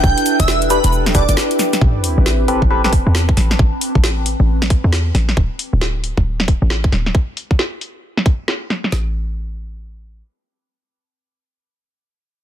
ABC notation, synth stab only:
X:1
M:4/4
L:1/16
Q:"Swing 16ths" 1/4=135
K:Am
V:1 name="Synth stab"
z6 [DEGB] z3 [DEGB] z4 z | z6 [CGAB] z [CGAB] [CGAB] z6 | z16 | z16 |
z16 | z16 | z16 |]